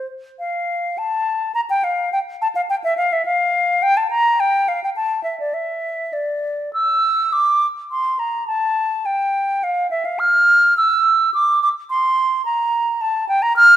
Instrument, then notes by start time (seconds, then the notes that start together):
flute
0.39 F5
0.98 A5
1.55 A#5
1.70 G5
1.84 F5
2.13 G5
2.42 A5
2.55 F5
2.70 G5
2.84 E5
2.97 F5
3.13 E5
3.25 F5
3.83 G5
3.97 A5
4.10 A#5
4.40 G5
4.68 F5
4.84 G5
4.96 A5
5.24 E5
5.40 D5
5.54 E5
6.13 D5
6.73 E6
7.33 D6
7.91 C6
8.19 A#5
8.47 A5
9.06 G5
9.64 F5
9.91 E5
10.05 F5
10.19 F6
10.77 E6
11.34 D6
11.63 D6
11.90 C6
12.45 A#5
13.01 A5
13.29 G5
13.42 A#5
13.56 F6